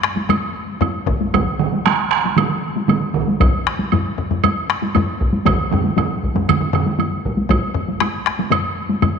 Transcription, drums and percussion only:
0.03 taiko rim
0.17 taiko high
0.29 taiko low-mid, taiko high, high woodblock
0.81 taiko low-mid, taiko high, high woodblock
1.07 taiko, taiko low-mid
1.21 taiko high
1.34 taiko, taiko mid, taiko high, high woodblock
1.59 taiko mid
1.73 taiko high
1.86 taiko rim, taiko high, high woodblock
2.11 taiko rim
2.25 taiko high
2.37 taiko mid, taiko high, high woodblock
2.77 taiko high
2.88 taiko mid, taiko high, high woodblock
3.14 taiko, taiko mid
3.28 taiko high
3.40 taiko, taiko low-mid, taiko high, high woodblock
3.67 taiko rim
3.79 taiko high
3.92 taiko low-mid, taiko high, high woodblock
4.18 taiko low-mid
4.31 taiko low-mid, taiko high
4.44 taiko low-mid, taiko high, high woodblock
4.70 taiko rim
4.82 taiko high
4.95 taiko low-mid, taiko high, high woodblock
5.21 taiko
5.33 taiko high
5.45 taiko, taiko low-mid, taiko mid, taiko high, high woodblock
5.71 taiko low-mid, taiko mid, taiko high
5.84 taiko high
5.97 taiko low-mid, taiko mid, taiko high, high woodblock
6.23 taiko
6.35 taiko low-mid, taiko mid, taiko high
6.48 taiko low-mid, taiko mid, taiko high, high woodblock
6.61 taiko low-mid, taiko mid
6.73 taiko low-mid, taiko mid, high woodblock
6.86 taiko high
6.99 taiko high, high woodblock
7.25 taiko
7.37 taiko high
7.49 taiko, taiko low-mid, taiko high, high woodblock
7.75 taiko low-mid
7.88 taiko high
8.00 taiko rim, taiko high, high woodblock
8.26 taiko rim
8.39 taiko high
8.51 taiko low-mid, taiko high, high woodblock
8.89 taiko high
9.02 taiko low-mid, taiko high, high woodblock

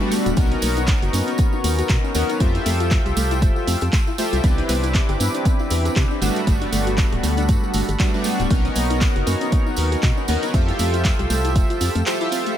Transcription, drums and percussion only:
0.00 tambourine
0.12 open hi-hat, tambourine
0.26 closed hi-hat, tambourine
0.37 kick, closed hi-hat, tambourine
0.52 closed hi-hat, tambourine
0.62 open hi-hat, tambourine
0.77 closed hi-hat, tambourine
0.87 kick, clap, closed hi-hat, tambourine
1.02 closed hi-hat, tambourine
1.13 open hi-hat, tambourine
1.28 closed hi-hat, tambourine
1.38 kick, closed hi-hat, tambourine
1.53 tambourine
1.64 open hi-hat, tambourine
1.78 closed hi-hat, tambourine
1.89 kick, clap, closed hi-hat, tambourine
2.04 tambourine
2.15 open hi-hat, tambourine
2.29 closed hi-hat, tambourine
2.40 kick, closed hi-hat, tambourine
2.55 closed hi-hat, tambourine
2.66 open hi-hat, tambourine
2.80 closed hi-hat, tambourine
2.91 kick, clap, closed hi-hat, tambourine
3.06 closed hi-hat, tambourine
3.17 open hi-hat, tambourine
3.31 closed hi-hat, tambourine
3.42 kick, closed hi-hat, tambourine
3.56 tambourine
3.67 open hi-hat, tambourine
3.81 closed hi-hat, tambourine
3.93 kick, clap, closed hi-hat, tambourine
4.07 tambourine
4.18 open hi-hat, tambourine
4.33 closed hi-hat, tambourine
4.44 kick, closed hi-hat, tambourine
4.58 closed hi-hat, tambourine
4.69 open hi-hat, tambourine
4.83 closed hi-hat, tambourine
4.94 kick, clap, closed hi-hat, tambourine
5.09 closed hi-hat, tambourine
5.20 open hi-hat, tambourine
5.35 closed hi-hat, tambourine
5.45 kick, closed hi-hat, tambourine
5.59 tambourine
5.70 open hi-hat, tambourine
5.85 closed hi-hat, tambourine
5.96 kick, clap, closed hi-hat, tambourine
6.11 tambourine
6.22 open hi-hat, tambourine
6.36 closed hi-hat, tambourine
6.47 kick, closed hi-hat, tambourine
6.61 closed hi-hat, tambourine
6.73 open hi-hat, tambourine
6.87 closed hi-hat, tambourine
6.98 kick, clap, closed hi-hat, tambourine
7.12 closed hi-hat, tambourine
7.23 open hi-hat, tambourine
7.37 closed hi-hat, tambourine
7.48 kick, closed hi-hat, tambourine
7.64 tambourine
7.74 open hi-hat, tambourine
7.89 closed hi-hat, tambourine
8.00 kick, clap, closed hi-hat, tambourine
8.14 tambourine
8.24 open hi-hat, tambourine
8.40 closed hi-hat, tambourine
8.50 kick, closed hi-hat, tambourine
8.65 closed hi-hat, tambourine
8.76 open hi-hat, tambourine
8.90 closed hi-hat, tambourine
9.01 kick, clap, closed hi-hat, tambourine
9.16 closed hi-hat, tambourine
9.27 open hi-hat, tambourine
9.41 closed hi-hat, tambourine
9.52 kick, closed hi-hat, tambourine
9.67 tambourine
9.77 open hi-hat, tambourine
9.92 closed hi-hat, tambourine
10.03 kick, clap, closed hi-hat, tambourine
10.17 tambourine
10.28 open hi-hat, tambourine
10.43 closed hi-hat, tambourine
10.54 kick, closed hi-hat, tambourine
10.68 closed hi-hat, tambourine
10.79 open hi-hat, tambourine
10.94 closed hi-hat, tambourine
11.05 kick, clap, closed hi-hat, tambourine
11.19 closed hi-hat, tambourine
11.30 open hi-hat, tambourine
11.45 closed hi-hat, tambourine
11.56 kick, closed hi-hat, tambourine
11.70 closed hi-hat, tambourine
11.81 open hi-hat, tambourine
11.95 closed hi-hat, tambourine
12.06 clap, closed hi-hat, tambourine
12.21 closed hi-hat, tambourine
12.32 open hi-hat, tambourine
12.46 closed hi-hat, tambourine

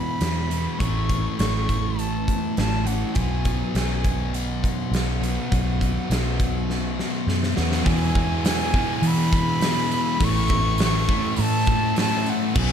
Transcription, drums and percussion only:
0.21 snare, closed hi-hat
0.51 closed hi-hat
0.80 kick, closed hi-hat
1.09 kick, closed hi-hat
1.39 snare, closed hi-hat
1.69 kick, closed hi-hat
1.99 closed hi-hat
2.28 kick, closed hi-hat
2.57 snare, closed hi-hat
2.87 closed hi-hat
3.15 kick, closed hi-hat
3.45 kick, closed hi-hat
3.75 snare, closed hi-hat
4.04 kick, closed hi-hat
4.34 closed hi-hat
4.64 kick, closed hi-hat
4.94 snare, closed hi-hat
5.24 closed hi-hat
5.52 kick, closed hi-hat
5.81 kick, closed hi-hat
6.11 snare, closed hi-hat
6.40 kick, closed hi-hat
6.70 snare
6.99 snare
7.28 snare
7.43 snare
7.57 snare
7.72 snare
7.86 kick, open hi-hat, tambourine
8.15 kick
8.45 snare, open hi-hat, tambourine
8.74 kick, tambourine
9.03 open hi-hat, tambourine
9.33 kick, tambourine
9.61 snare, open hi-hat, tambourine
9.92 tambourine
10.19 kick, open hi-hat, tambourine
10.48 kick, tambourine
10.78 snare, open hi-hat, tambourine
11.07 kick, tambourine
11.36 open hi-hat, tambourine
11.65 kick, tambourine
11.96 snare, open hi-hat, tambourine
12.26 tambourine
12.55 kick, tambourine, crash

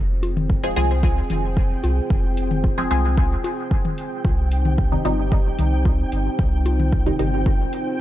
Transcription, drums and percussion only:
0.23 open hi-hat, high conga
0.37 mid tom
0.50 kick
0.76 open hi-hat
1.03 kick, high conga
1.30 open hi-hat, mid tom
1.57 kick
1.84 open hi-hat, high conga
2.10 kick
2.37 open hi-hat
2.51 mid tom
2.64 kick, high conga
2.91 open hi-hat
3.18 kick
3.44 open hi-hat, high conga
3.71 kick
3.85 mid tom
3.98 open hi-hat
4.25 kick, high conga
4.51 open hi-hat
4.65 mid tom
4.78 kick
5.05 open hi-hat, high conga
5.32 kick
5.59 open hi-hat, mid tom
5.85 kick, high conga
6.12 open hi-hat
6.39 kick
6.66 open hi-hat, high conga
6.80 mid tom
6.92 kick
7.19 open hi-hat
7.46 kick, high conga
7.73 open hi-hat

